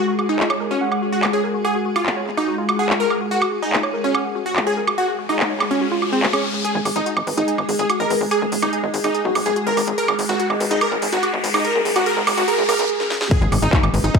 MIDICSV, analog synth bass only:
0, 0, Header, 1, 2, 480
1, 0, Start_track
1, 0, Tempo, 416667
1, 1896, Time_signature, 4, 2, 24, 8
1, 16349, End_track
2, 0, Start_track
2, 0, Title_t, "Analog synth bass"
2, 0, Program_c, 0, 38
2, 7776, Note_on_c, 0, 32, 89
2, 7845, Note_off_c, 0, 32, 0
2, 7896, Note_on_c, 0, 32, 100
2, 7965, Note_off_c, 0, 32, 0
2, 8016, Note_on_c, 0, 32, 90
2, 8085, Note_off_c, 0, 32, 0
2, 8256, Note_on_c, 0, 32, 85
2, 8325, Note_off_c, 0, 32, 0
2, 8376, Note_on_c, 0, 32, 101
2, 8445, Note_off_c, 0, 32, 0
2, 8496, Note_on_c, 0, 32, 94
2, 8565, Note_off_c, 0, 32, 0
2, 8735, Note_on_c, 0, 32, 86
2, 8805, Note_off_c, 0, 32, 0
2, 8856, Note_on_c, 0, 32, 98
2, 8925, Note_off_c, 0, 32, 0
2, 8976, Note_on_c, 0, 32, 93
2, 9045, Note_off_c, 0, 32, 0
2, 9216, Note_on_c, 0, 32, 85
2, 9285, Note_off_c, 0, 32, 0
2, 9336, Note_on_c, 0, 32, 95
2, 9405, Note_off_c, 0, 32, 0
2, 9456, Note_on_c, 0, 32, 93
2, 9525, Note_off_c, 0, 32, 0
2, 9696, Note_on_c, 0, 27, 87
2, 9765, Note_off_c, 0, 27, 0
2, 9816, Note_on_c, 0, 27, 103
2, 9885, Note_off_c, 0, 27, 0
2, 9936, Note_on_c, 0, 27, 89
2, 10005, Note_off_c, 0, 27, 0
2, 10176, Note_on_c, 0, 32, 88
2, 10245, Note_off_c, 0, 32, 0
2, 10296, Note_on_c, 0, 32, 104
2, 10365, Note_off_c, 0, 32, 0
2, 10416, Note_on_c, 0, 32, 93
2, 10485, Note_off_c, 0, 32, 0
2, 10655, Note_on_c, 0, 35, 89
2, 10725, Note_off_c, 0, 35, 0
2, 10775, Note_on_c, 0, 35, 97
2, 10845, Note_off_c, 0, 35, 0
2, 10895, Note_on_c, 0, 35, 96
2, 10965, Note_off_c, 0, 35, 0
2, 11135, Note_on_c, 0, 32, 87
2, 11205, Note_off_c, 0, 32, 0
2, 11255, Note_on_c, 0, 32, 101
2, 11325, Note_off_c, 0, 32, 0
2, 11375, Note_on_c, 0, 32, 94
2, 11445, Note_off_c, 0, 32, 0
2, 11615, Note_on_c, 0, 32, 90
2, 11685, Note_off_c, 0, 32, 0
2, 11736, Note_on_c, 0, 32, 102
2, 11805, Note_off_c, 0, 32, 0
2, 11856, Note_on_c, 0, 32, 91
2, 11925, Note_off_c, 0, 32, 0
2, 12096, Note_on_c, 0, 32, 87
2, 12165, Note_off_c, 0, 32, 0
2, 12216, Note_on_c, 0, 32, 102
2, 12285, Note_off_c, 0, 32, 0
2, 12336, Note_on_c, 0, 32, 90
2, 12405, Note_off_c, 0, 32, 0
2, 12576, Note_on_c, 0, 32, 89
2, 12645, Note_off_c, 0, 32, 0
2, 12696, Note_on_c, 0, 32, 96
2, 12765, Note_off_c, 0, 32, 0
2, 12816, Note_on_c, 0, 32, 97
2, 12885, Note_off_c, 0, 32, 0
2, 13056, Note_on_c, 0, 32, 88
2, 13125, Note_off_c, 0, 32, 0
2, 13175, Note_on_c, 0, 32, 99
2, 13245, Note_off_c, 0, 32, 0
2, 13296, Note_on_c, 0, 32, 95
2, 13365, Note_off_c, 0, 32, 0
2, 13536, Note_on_c, 0, 27, 89
2, 13605, Note_off_c, 0, 27, 0
2, 13656, Note_on_c, 0, 27, 100
2, 13725, Note_off_c, 0, 27, 0
2, 13776, Note_on_c, 0, 27, 94
2, 13845, Note_off_c, 0, 27, 0
2, 14016, Note_on_c, 0, 32, 90
2, 14085, Note_off_c, 0, 32, 0
2, 14136, Note_on_c, 0, 32, 102
2, 14205, Note_off_c, 0, 32, 0
2, 14255, Note_on_c, 0, 32, 95
2, 14325, Note_off_c, 0, 32, 0
2, 14496, Note_on_c, 0, 35, 89
2, 14565, Note_off_c, 0, 35, 0
2, 14616, Note_on_c, 0, 35, 98
2, 14685, Note_off_c, 0, 35, 0
2, 14736, Note_on_c, 0, 35, 96
2, 14805, Note_off_c, 0, 35, 0
2, 15456, Note_on_c, 0, 32, 87
2, 15525, Note_off_c, 0, 32, 0
2, 15576, Note_on_c, 0, 32, 103
2, 15645, Note_off_c, 0, 32, 0
2, 15696, Note_on_c, 0, 32, 91
2, 15765, Note_off_c, 0, 32, 0
2, 15936, Note_on_c, 0, 32, 89
2, 16005, Note_off_c, 0, 32, 0
2, 16056, Note_on_c, 0, 32, 104
2, 16125, Note_off_c, 0, 32, 0
2, 16176, Note_on_c, 0, 32, 97
2, 16245, Note_off_c, 0, 32, 0
2, 16349, End_track
0, 0, End_of_file